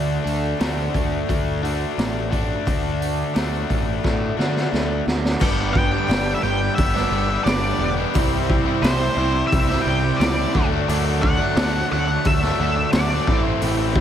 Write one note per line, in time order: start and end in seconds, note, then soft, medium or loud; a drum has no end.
0.00 0.18 D2 medium
0.00 0.59 D3 medium
0.00 1.63 D3 medium
0.00 2.65 D3 medium
0.00 0.56 A3 medium
0.00 0.59 A3 medium
0.00 0.94 A3 medium
0.00 0.59 D4 medium
0.00 0.61 D4 medium
0.00 0.58 F#4 medium
0.00 0.59 A4 medium
0.24 0.53 D2 medium
0.24 1.97 A4 medium
0.24 open hi-hat soft
0.57 0.88 D2 medium
0.57 1.61 D3 medium
0.57 1.25 A3 medium
0.57 1.61 A3 medium
0.57 1.28 D4 medium
0.57 1.28 F#4 medium
0.57 1.62 F#4 medium
0.57 1.28 A4 medium
0.57 snare medium
0.57 open hi-hat medium
0.61 1.62 D4 medium
0.94 1.22 D2 medium
0.94 1.97 A3 medium
0.94 kick medium
0.94 open hi-hat soft
1.26 1.84 D2 medium
1.26 1.62 A3 medium
1.26 1.63 D4 medium
1.26 2.31 D4 medium
1.26 1.62 F#4 medium
1.26 1.61 A4 medium
1.26 kick medium
1.26 open hi-hat medium
1.62 2.29 D3 medium
1.62 2.30 A3 medium
1.62 2.31 D4 medium
1.62 1.97 D4 soft
1.62 1.97 F#4 medium
1.62 3.35 F#4 medium
1.62 1.97 A4 medium
1.62 open hi-hat soft
1.97 2.53 A1 medium
1.97 2.32 A3 medium
1.97 3.68 A3 medium
1.97 2.32 D4 medium
1.97 2.32 F#4 medium
1.97 2.30 A4 medium
1.97 snare medium
1.97 open hi-hat medium
2.30 3.32 D3 medium
2.30 3.33 A3 medium
2.30 3.33 D4 medium
2.30 2.66 F#4 soft
2.30 2.66 A4 medium
2.30 kick medium
2.30 open hi-hat soft
2.34 2.66 D4 soft
2.65 3.22 D2 medium
2.65 3.35 D3 medium
2.65 4.38 D3 medium
2.65 3.33 A3 medium
2.65 3.34 D4 medium
2.65 3.35 F#4 medium
2.65 3.36 A4 medium
2.65 kick medium
2.65 open hi-hat medium
3.02 4.73 A4 medium
3.02 open hi-hat medium
3.34 3.63 D2 medium
3.34 4.36 D3 medium
3.34 4.02 A3 medium
3.34 4.37 A3 medium
3.34 4.03 D4 medium
3.34 4.35 D4 medium
3.34 4.04 F#4 medium
3.34 4.38 F#4 medium
3.34 4.05 A4 medium
3.34 snare medium
3.34 open hi-hat medium
3.69 3.98 A1 medium
3.69 4.72 A3 medium
3.69 kick medium
3.69 open hi-hat soft
4.03 4.32 A2 medium
4.03 4.38 A3 medium
4.03 5.07 D4 medium
4.03 4.39 D4 medium
4.03 4.38 F#4 medium
4.03 4.36 A4 medium
4.03 kick medium
4.03 snare medium
4.37 4.66 D3 medium
4.37 5.05 D3 medium
4.37 5.05 A3 medium
4.37 5.04 D4 medium
4.37 4.71 D4 soft
4.37 5.42 F#4 medium
4.37 4.72 F#4 soft
4.37 4.72 A4 soft
4.37 snare medium
4.57 snare medium
4.71 5.00 D2 medium
4.71 5.06 A3 medium
4.71 5.42 A3 medium
4.71 5.07 D4 medium
4.71 5.06 F#4 medium
4.71 5.04 A4 medium
4.71 snare medium
5.06 5.34 D2 medium
5.06 5.42 D4 medium
5.06 5.39 D4 soft
5.06 5.40 F#4 medium
5.06 5.41 A4 medium
5.06 snare medium
5.25 snare medium
5.39 5.91 G1 medium
5.39 6.07 G2 medium
5.39 6.07 D3 medium
5.39 6.08 G3 medium
5.39 5.74 G3 medium
5.39 8.13 B3 medium
5.39 5.74 B3 medium
5.39 6.08 D4 medium
5.39 8.13 D4 medium
5.39 5.74 D4 medium
5.39 6.10 G4 medium
5.39 8.13 G4 medium
5.39 5.76 G4 loud
5.39 6.09 B4 medium
5.39 8.13 D5 medium
5.39 kick loud
5.39 crash loud
5.73 5.93 G3 medium
5.73 5.92 B3 medium
5.73 5.92 D4 medium
5.73 5.92 G4 medium
5.73 6.34 G5 loud
5.73 kick medium
5.92 6.09 G3 medium
5.92 6.08 B3 medium
5.92 6.09 D4 medium
5.92 6.10 G4 medium
6.08 6.34 G1 medium
6.08 6.78 G2 medium
6.08 6.78 D3 medium
6.08 6.43 G3 medium
6.08 6.42 G3 medium
6.08 6.42 B3 medium
6.08 6.44 D4 medium
6.08 6.43 D4 medium
6.08 6.43 G4 medium
6.08 6.44 G4 loud
6.08 6.42 B4 medium
6.08 snare loud
6.08 open hi-hat medium
6.35 6.43 E5 medium
6.43 6.68 G1 medium
6.43 6.60 D3 medium
6.43 6.62 G3 medium
6.43 6.62 B3 medium
6.43 6.61 D4 medium
6.43 6.77 D4 soft
6.43 6.78 G4 soft
6.43 6.60 G4 medium
6.43 6.78 B4 medium
6.43 6.75 G5 medium
6.60 6.97 G3 medium
6.60 6.96 B3 medium
6.60 6.95 D4 medium
6.60 6.95 G4 medium
6.60 muted overdriven electric guitar stroke medium
6.75 7.03 G1 medium
6.75 7.45 G3 medium
6.75 7.46 D4 medium
6.75 7.42 E5 medium
6.75 kick loud
6.75 open hi-hat medium
6.80 7.46 G4 medium
6.80 7.47 B4 medium
6.96 7.12 G3 medium
6.96 7.12 B3 medium
6.96 7.13 D4 medium
6.96 7.13 G4 medium
6.96 snare soft
7.10 7.36 G1 medium
7.10 7.28 D3 medium
7.10 7.30 G3 medium
7.10 7.29 B3 medium
7.10 7.29 D4 medium
7.14 7.28 G4 medium
7.28 7.47 G3 medium
7.28 7.47 B3 medium
7.28 7.47 D4 medium
7.28 7.47 G4 medium
7.28 muted overdriven electric guitar stroke soft
7.44 7.71 G1 medium
7.44 7.98 G2 medium
7.44 7.98 D3 loud
7.44 7.81 G3 medium
7.44 7.65 G3 loud
7.44 7.65 B3 medium
7.44 7.81 D4 medium
7.44 7.80 G4 medium
7.44 7.93 D5 medium
7.44 snare medium
7.44 open hi-hat medium
7.48 7.64 D4 loud
7.48 7.64 G4 loud
7.48 7.78 B4 medium
7.66 7.99 G3 medium
7.66 7.99 B3 medium
7.66 7.98 D4 medium
7.66 7.98 G4 medium
7.78 8.04 E1 medium
7.78 8.15 D4 soft
7.78 8.15 G4 medium
7.78 8.14 B4 medium
7.99 8.15 G3 medium
7.99 8.14 B3 medium
7.99 8.14 D4 medium
7.99 8.14 G4 medium
8.14 8.65 C2 medium
8.14 8.81 C3 medium
8.14 8.83 C3 medium
8.14 8.81 E3 medium
8.14 8.82 G3 medium
8.14 8.48 G3 medium
8.14 8.82 C4 loud
8.14 10.52 C4 medium
8.14 8.48 C4 medium
8.14 10.52 E4 medium
8.14 8.83 E4 loud
8.14 8.49 E4 loud
8.14 10.52 G4 medium
8.14 8.83 C5 loud
8.14 10.52 E5 medium
8.14 kick loud
8.14 open hi-hat medium
8.18 8.50 G4 loud
8.49 8.83 G3 medium
8.49 8.67 C4 medium
8.49 8.66 E4 medium
8.49 8.64 G4 medium
8.49 kick medium
8.66 8.82 G3 medium
8.66 8.84 C4 medium
8.66 8.84 E4 medium
8.66 8.84 G4 medium
8.82 9.08 C2 medium
8.82 9.17 C3 medium
8.82 9.52 C3 medium
8.82 9.17 E3 medium
8.82 9.18 G3 medium
8.82 9.16 G3 medium
8.82 9.18 C4 medium
8.82 9.17 C4 medium
8.82 9.18 E4 medium
8.82 9.18 E4 loud
8.82 9.18 G4 loud
8.82 9.47 C5 medium
8.82 9.17 C5 medium
8.82 snare loud
8.82 open hi-hat medium
9.16 9.42 C2 medium
9.16 9.69 C3 medium
9.16 9.69 G3 medium
9.16 9.36 C4 medium
9.16 9.51 C4 soft
9.16 9.35 E4 medium
9.16 9.52 E4 medium
9.16 9.34 G4 medium
9.16 9.52 C5 medium
9.21 9.50 G3 soft
9.34 9.70 C4 medium
9.34 9.70 E4 medium
9.34 9.69 G4 medium
9.34 muted overdriven electric guitar stroke soft
9.47 10.20 G3 medium
9.47 9.85 E5 medium
9.52 9.77 C2 medium
9.52 10.21 C4 medium
9.52 10.21 E4 medium
9.52 10.21 C5 medium
9.52 kick loud
9.52 open hi-hat medium
9.70 9.85 G3 medium
9.70 9.86 C4 medium
9.70 9.87 E4 medium
9.70 9.88 G4 medium
9.70 snare soft
9.82 10.10 C2 medium
9.82 10.19 C3 medium
9.82 10.19 G5 loud
9.87 10.20 G3 medium
9.87 10.04 C4 medium
9.87 10.03 E4 medium
9.87 10.02 G4 medium
10.03 10.20 C4 medium
10.03 10.20 E4 medium
10.03 10.21 G4 medium
10.03 muted overdriven electric guitar stroke soft
10.17 10.45 C#2 medium
10.17 10.54 C3 medium
10.17 10.52 C3 loud
10.17 10.55 E3 medium
10.17 10.66 D5 medium
10.21 10.53 G3 loud
10.21 10.55 G3 medium
10.21 10.38 C4 loud
10.21 10.55 C4 medium
10.21 10.37 E4 loud
10.21 10.55 E4 medium
10.21 10.35 G4 loud
10.21 10.53 C5 medium
10.21 snare medium
10.21 open hi-hat soft
10.37 10.54 G3 medium
10.37 10.53 C4 medium
10.37 10.53 E4 medium
10.37 10.52 G4 medium
10.54 10.80 D2 medium
10.54 10.86 D3 medium
10.54 10.73 F#3 medium
10.54 13.25 A3 medium
10.54 10.72 A3 loud
10.54 13.26 D4 medium
10.54 10.71 D4 loud
10.54 10.89 D4 soft
10.54 13.25 F#4 medium
10.54 10.89 F#4 medium
10.54 10.88 A4 medium
10.54 13.25 D5 medium
10.54 kick loud
10.72 10.87 F#3 medium
10.72 10.89 A3 medium
10.72 10.89 D4 medium
10.88 11.38 D2 medium
10.88 11.21 D3 medium
10.88 11.56 D3 medium
10.88 11.22 F#3 medium
10.88 11.24 A3 medium
10.88 11.57 A3 medium
10.88 11.57 D4 medium
10.88 11.23 D4 loud
10.88 11.58 F#4 medium
10.88 11.59 A4 loud
10.88 open hi-hat medium
11.22 11.54 D3 medium
11.22 11.39 F#3 medium
11.22 11.40 A3 medium
11.22 11.38 D4 medium
11.22 11.87 F#5 loud
11.22 kick medium
11.39 11.55 F#3 medium
11.39 11.56 A3 medium
11.39 11.56 D4 medium
11.56 11.81 D2 loud
11.56 11.88 D3 medium
11.56 11.91 D3 medium
11.56 11.88 F#3 loud
11.56 11.90 A3 loud
11.56 11.91 A3 medium
11.56 11.90 D4 loud
11.56 11.92 D4 medium
11.56 11.92 F#4 medium
11.56 11.90 A4 medium
11.56 snare loud
11.56 open hi-hat medium
11.89 12.16 D2 medium
11.89 12.41 D3 medium
11.89 12.08 F#3 medium
11.89 12.07 A3 medium
11.89 12.05 D4 medium
11.89 12.25 A4 soft
11.89 12.27 F#5 medium
11.93 12.26 D4 soft
11.93 12.26 F#4 soft
12.07 12.44 F#3 medium
12.07 12.43 A3 medium
12.07 12.41 D4 medium
12.07 muted overdriven electric guitar stroke soft
12.25 12.50 D2 medium
12.25 12.94 A3 medium
12.25 12.94 D4 medium
12.25 12.95 F#4 medium
12.25 12.95 A4 medium
12.25 12.92 E5 medium
12.25 kick loud
12.25 open hi-hat medium
12.43 12.58 F#3 medium
12.43 12.59 A3 medium
12.43 12.60 D4 medium
12.43 snare soft
12.59 12.84 D2 medium
12.59 12.92 D3 medium
12.59 12.78 F#3 medium
12.59 12.77 A3 medium
12.59 12.75 D4 medium
12.76 12.93 F#3 medium
12.76 12.93 A3 medium
12.76 12.93 D4 medium
12.76 muted overdriven electric guitar stroke soft
12.93 13.18 D2 medium
12.93 13.25 D3 loud
12.93 13.28 D3 medium
12.93 13.12 F#3 medium
12.93 13.11 A3 loud
12.93 13.28 A3 medium
12.93 13.09 D4 loud
12.93 13.28 D4 medium
12.93 13.29 F#4 medium
12.93 13.27 A4 medium
12.93 13.41 D5 medium
12.93 snare loud
12.93 open hi-hat medium
13.10 13.27 F#3 medium
13.10 13.26 A3 medium
13.10 13.25 D4 medium
13.27 13.52 A1 medium
13.27 13.60 A2 medium
13.27 13.61 E3 medium
13.27 14.01 A3 medium
13.27 13.45 A3 loud
13.27 14.01 C4 medium
13.27 13.44 C4 loud
13.27 13.62 C4 soft
13.27 14.01 E4 medium
13.27 13.43 E4 loud
13.27 13.62 E4 soft
13.27 13.62 A4 medium
13.27 14.01 C5 medium
13.27 kick loud
13.32 13.62 A3 soft
13.44 13.61 A3 medium
13.44 13.62 C4 medium
13.44 13.62 E4 medium
13.61 14.01 A1 medium
13.61 14.01 A2 medium
13.61 13.94 E3 medium
13.61 14.01 E3 medium
13.61 13.95 A3 medium
13.61 14.01 A3 medium
13.61 13.95 C4 loud
13.61 14.01 C4 medium
13.61 13.96 E4 loud
13.61 14.01 E4 medium
13.61 14.01 A4 medium
13.61 open hi-hat medium
13.95 14.01 E3 medium
13.95 14.01 A3 medium
13.95 14.01 C4 medium
13.95 14.01 E4 medium
13.95 kick loud